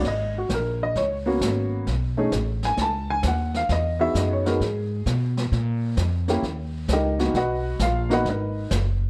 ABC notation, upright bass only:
X:1
M:4/4
L:1/8
Q:"Swing" 1/4=132
K:Abdor
V:1 name="Upright bass" clef=bass
A,,,2 B,,,2 D,,2 A,,,2 | =B,,,2 =A,,,2 ^C,,2 ^D,,2 | =E,,2 ^F,,2 ^G,,2 =B,,2 | B,,2 F,,2 E,,2 D,,2 |
C,,2 B,,,2 A,,,2 G,,,2 |]